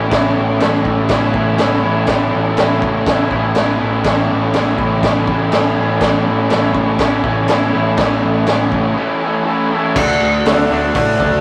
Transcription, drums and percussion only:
0.11 kick, snare, crash
0.60 snare, crash
0.85 kick
1.09 kick, snare, crash
1.34 kick
1.58 snare, crash
2.07 kick, snare, crash
2.57 snare, crash
2.82 kick
3.06 kick, snare, crash
3.31 kick
3.55 snare, crash
4.04 kick, snare, crash
4.54 snare, crash
4.78 kick
5.03 kick, snare, crash
5.27 kick
5.52 snare, crash
6.01 kick, snare, crash
6.50 snare, crash
6.75 kick
6.99 kick, snare, crash
7.24 kick
7.48 snare, crash
7.97 kick, snare, crash
8.47 snare, crash
8.72 kick
9.96 kick, crash
10.46 snare, open hi-hat
10.95 kick, open hi-hat
11.20 kick

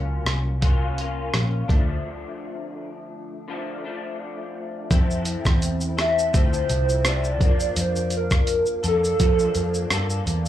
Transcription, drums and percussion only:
0.26 cross-stick, closed hi-hat
0.62 kick, closed hi-hat
0.98 closed hi-hat
1.34 cross-stick, closed hi-hat
1.69 kick, closed hi-hat
4.91 kick, closed hi-hat, shaker
5.10 shaker
5.25 closed hi-hat, shaker
5.45 kick, cross-stick, shaker
5.62 closed hi-hat, shaker
5.81 shaker
5.99 cross-stick, closed hi-hat, shaker
6.19 shaker
6.34 kick, closed hi-hat, shaker
6.53 shaker
6.70 closed hi-hat, shaker
6.89 shaker
7.05 cross-stick, closed hi-hat, shaker
7.24 shaker
7.41 kick, closed hi-hat, shaker
7.60 shaker
7.76 closed hi-hat, shaker
7.96 shaker
8.10 closed hi-hat, shaker
8.31 kick, cross-stick, shaker
8.47 closed hi-hat, shaker
8.66 shaker
8.84 closed hi-hat, shaker
9.04 shaker
9.20 kick, closed hi-hat, shaker
9.39 shaker
9.55 closed hi-hat, shaker
9.74 shaker
9.90 cross-stick, closed hi-hat, shaker
10.10 shaker
10.27 closed hi-hat, shaker

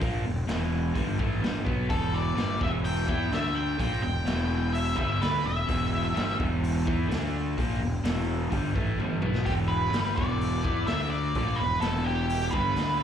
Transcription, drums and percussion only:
0.01 kick, open hi-hat
0.48 snare, open hi-hat
0.95 kick, open hi-hat
1.19 kick
1.43 snare, open hi-hat
1.67 kick
1.90 kick, open hi-hat
2.37 snare, open hi-hat
2.61 kick
2.85 open hi-hat
3.09 kick
3.32 snare, open hi-hat
3.80 kick, open hi-hat
4.27 snare, open hi-hat
4.74 open hi-hat
4.98 kick
5.22 snare, open hi-hat
5.69 kick, open hi-hat
6.16 snare, open hi-hat
6.40 kick
6.64 open hi-hat
6.87 kick
7.11 snare, open hi-hat
7.58 kick, open hi-hat
8.05 snare, open hi-hat
8.52 kick, open hi-hat
8.76 kick
9.00 high tom
9.22 mid tom
9.35 snare
9.46 kick, open hi-hat
9.93 snare, open hi-hat
10.18 kick
10.41 open hi-hat
10.65 kick
10.87 snare, open hi-hat
11.35 kick, open hi-hat
11.82 snare, open hi-hat
12.30 open hi-hat
12.53 kick
12.76 snare, open hi-hat

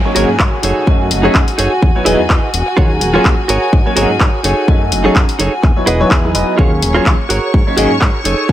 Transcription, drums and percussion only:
0.16 open hi-hat
0.39 kick, clap
0.63 open hi-hat
0.87 kick
1.11 open hi-hat
1.35 kick, clap
1.48 open hi-hat
1.59 open hi-hat
1.82 kick
2.06 open hi-hat
2.30 kick, clap
2.54 open hi-hat
2.78 kick
3.01 open hi-hat
3.25 kick, clap
3.49 open hi-hat
3.73 kick
3.97 open hi-hat
4.20 kick, clap
4.44 open hi-hat
4.68 kick
4.92 open hi-hat
5.16 kick, clap
5.29 open hi-hat
5.40 open hi-hat
5.63 kick, clap
5.87 open hi-hat
6.11 kick, clap
6.35 open hi-hat
6.59 kick
6.82 open hi-hat
7.06 kick, clap
7.30 open hi-hat
7.54 kick
7.78 open hi-hat
8.01 kick, clap
8.25 open hi-hat
8.49 kick

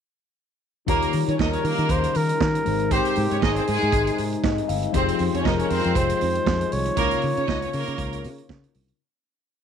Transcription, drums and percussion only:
0.88 kick, closed hi-hat
1.02 closed hi-hat
1.13 open hi-hat
1.28 closed hi-hat
1.39 kick, snare
1.53 closed hi-hat
1.65 open hi-hat
1.78 closed hi-hat
1.89 kick, closed hi-hat
2.03 closed hi-hat
2.15 open hi-hat
2.29 closed hi-hat
2.40 kick, snare
2.55 closed hi-hat
2.66 open hi-hat
2.79 closed hi-hat
2.91 kick, closed hi-hat
3.05 closed hi-hat
3.15 open hi-hat
3.31 closed hi-hat
3.42 kick, snare
3.56 closed hi-hat
3.67 open hi-hat
3.81 closed hi-hat
3.92 kick, closed hi-hat
4.07 closed hi-hat
4.18 open hi-hat
4.32 closed hi-hat
4.44 kick, snare
4.58 closed hi-hat
4.69 open hi-hat
4.83 closed hi-hat
4.94 kick, closed hi-hat
5.08 closed hi-hat
5.19 open hi-hat
5.34 closed hi-hat
5.45 kick, snare
5.59 closed hi-hat
5.70 open hi-hat
5.84 closed hi-hat
5.95 kick, closed hi-hat
6.09 closed hi-hat
6.21 open hi-hat
6.35 closed hi-hat
6.47 kick, snare
6.61 closed hi-hat
6.72 open hi-hat
6.85 closed hi-hat
6.97 kick, closed hi-hat
7.11 closed hi-hat
7.22 open hi-hat
7.37 closed hi-hat
7.48 kick, snare
7.62 closed hi-hat
7.73 open hi-hat
7.87 closed hi-hat
7.98 kick, closed hi-hat
8.13 closed hi-hat
8.24 open hi-hat
8.38 closed hi-hat
8.49 kick, snare
8.64 closed hi-hat
8.74 open hi-hat
8.88 closed hi-hat

